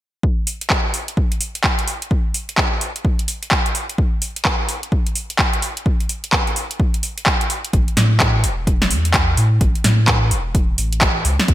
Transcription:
0.23 kick
0.47 open hi-hat
0.61 closed hi-hat
0.70 kick, clap
0.94 open hi-hat
1.08 closed hi-hat
1.17 kick
1.32 closed hi-hat
1.41 open hi-hat
1.55 closed hi-hat
1.64 kick, clap
1.79 closed hi-hat
1.88 open hi-hat
2.02 closed hi-hat
2.11 kick
2.34 open hi-hat
2.49 closed hi-hat
2.58 kick, clap
2.81 open hi-hat
2.96 closed hi-hat
3.05 kick
3.19 closed hi-hat
3.28 open hi-hat
3.43 closed hi-hat
3.51 kick, clap
3.66 closed hi-hat
3.75 open hi-hat
3.89 closed hi-hat
3.98 kick
4.22 open hi-hat
4.36 closed hi-hat
4.45 kick, clap
4.69 open hi-hat
4.83 closed hi-hat
4.92 kick
5.07 closed hi-hat
5.15 open hi-hat
5.30 closed hi-hat
5.39 kick, clap
5.53 closed hi-hat
5.62 open hi-hat
5.77 closed hi-hat
5.86 kick
6.00 closed hi-hat
6.09 open hi-hat
6.24 closed hi-hat
6.33 kick, clap
6.47 closed hi-hat
6.56 open hi-hat
6.71 closed hi-hat
6.80 kick
6.94 closed hi-hat
7.03 open hi-hat
7.18 closed hi-hat
7.26 kick, clap
7.41 closed hi-hat
7.50 open hi-hat
7.65 closed hi-hat
7.73 A1, kick, closed hi-hat
7.88 closed hi-hat
7.97 A2, snare, open hi-hat
8.20 kick, clap, closed hi-hat
8.44 E1, open hi-hat
8.67 kick, closed hi-hat
8.82 snare
8.91 E2, open hi-hat
9.05 closed hi-hat
9.14 kick, clap, closed hi-hat
9.37 A2, open hi-hat
9.61 A1, kick, closed hi-hat
9.75 closed hi-hat
9.84 A2, snare, open hi-hat
10.08 kick, clap, closed hi-hat
10.31 E1, open hi-hat
10.55 kick, closed hi-hat
10.78 A1, open hi-hat
10.93 closed hi-hat
11.01 kick, clap, closed hi-hat
11.25 C#2, open hi-hat
11.39 snare
11.48 C#2, kick, closed hi-hat

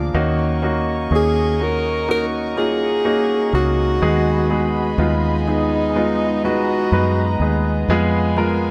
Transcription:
Already playing: D2 A#2 F3 A#3 D4 F4 G#4 A#4 D5 F5 D6
0.14 D#2 D#3 A#3 C#4 D#4 F#4 A#4 D#5 A#5 C#6
0.62 A#3 C#4 D#4 F#4
1.11 D#2 A#3 C#4 D#4 G#4
1.16 G#4
1.60 A#3 C#4 D#4 F#4 A#4
2.08 A#3 C#4 D#4 F#4 A#4
2.57 A#3 C#4 D#4 F4 G#4
3.05 A#3 C#4 D#4 F#4
3.53 C#2 A#3 C#4 D#4 F#4 G#4
4.01 D#2 D#3 G#3 B3 D#4 G#4 D#5 B5
4.50 G#3 B3 D#4 G#4
4.98 D#2 G#3 B3 D#4 F4
5.47 G#3 B3 D#4 G#4
5.95 G#3 B3 D#4 F4 A#5
6.45 G#3 B3 D#4 F#4 B4
6.92 F#2 G#3 B3 D#4 B4
7.40 D#2 G#3 B3 D#4 G#4
7.88 F2 G#3 B3 F4 G#4 F5 G#5
8.37 G#3 B3 F4 A#4

